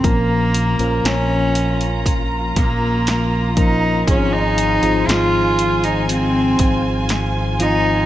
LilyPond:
<<
  \new Staff \with { instrumentName = "String section" } { \time 4/4 \key bes \minor \tempo 4 = 60 << { bes''1 | <c'' aes''>1 | } \\ { f'1~ | f'1 | } >> }
  \new Staff \with { instrumentName = "Cello" } { \time 4/4 \key bes \minor bes4 des'4 r8 bes4 ees'8 | des'16 ees'8. f'8. ees'16 c'4 r8 ees'8 | }
  \new Staff \with { instrumentName = "Tine electric piano" } { \time 4/4 \key bes \minor <f bes des' bes'>8. <f bes des' bes'>2 r8. <f bes des' bes'>8 | <f bes c' ees' aes'>8. <f c' ees' aes'>2 r8. <f c' ees' f'>8 | }
  \new Staff \with { instrumentName = "Tine electric piano" } { \clef bass \time 4/4 \key bes \minor bes,4. r2 r8 | aes,4. r2 r8 | }
  \new Staff \with { instrumentName = "Fingered electric bass" } { \clef bass \time 4/4 \key bes \minor bes,,8. bes,,16 bes,,4. bes,,4. | aes,,8. aes,,16 aes,,4. aes,,4. | }
  \new DrumStaff \with { instrumentName = "Drums" } \drummode { \time 4/4 <hh bd>8 hh16 hh16 <hh sn>8 hh16 hh16 <hh bd>8 <hh bd>8 <hh sn>8 <hh bd>8 | <hh bd>8 hh16 hh16 <hh sn>8 hh16 hh16 hh8 <hh bd>8 <hh sn>8 hh8 | }
>>